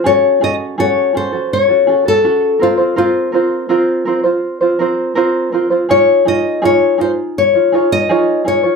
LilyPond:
<<
  \new Staff \with { instrumentName = "Nylon-string guitar" } { \time 4/4 \key ges \lydian \tempo 4 = 82 des''8 ees''8 des''8 c''8 des''8. a'8. f'8 | f'2.~ f'8 r8 | des''8 ees''8 des''8 c''8 des''8. ees''8. des''8 | }
  \new Staff \with { instrumentName = "Ukulele" } { \time 4/4 \key ges \lydian <des' ges' aes' a'>8 <des' ges' aes' a'>8 <des' ges' aes' a'>8 <des' ges' aes' a'>16 <des' ges' a'>8 <des' ges' a'>16 <des' ges' aes' a'>16 <des' ges' a'>16 <des' ges' a'>8 <c' f' bes' c''>16 <c' f' c''>16 | <c' f' bes' c''>8 <c' f' bes' c''>8 <c' f' bes' c''>8 <c' f' bes' c''>16 <c' f' c''>8 <c' f' c''>16 <c' f' bes' c''>8 <c' f' bes' c''>8 <c' f' bes' c''>16 <c' f' c''>16 | <ees' f' aes' des''>8 <ees' f' aes' des''>8 <ees' f' aes' des''>8 <ees' f' aes'>8. <ees' f' des''>16 <ees' f' aes' des''>8 <ees' f' aes' des''>8 <ees' f' aes' des''>16 <ees' f' des''>16 | }
>>